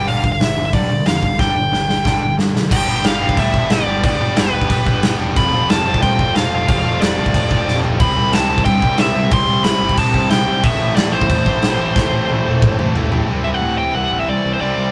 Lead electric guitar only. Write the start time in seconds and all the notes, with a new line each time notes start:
0.07 F5
0.32 E5
0.65 E5
0.74 D5
1.07 F5
1.40 G5
2.72 G5
3.06 F5
3.39 E5
3.72 D5
4.04 D5
4.37 B4
5.37 B5
5.70 A5
6.02 G5
6.35 F5
6.68 F5
7.01 D5
8.00 B5
8.33 A5
8.65 G5
8.99 E5
9.33 C6
9.64 B5
9.98 A5
10.31 G5
10.64 E5
10.96 D5
11.12 C5
13.44 E5
13.54 F#5
13.78 G5
13.95 F#5
14.20 E5
14.29 D5
14.53 C5
14.61 D5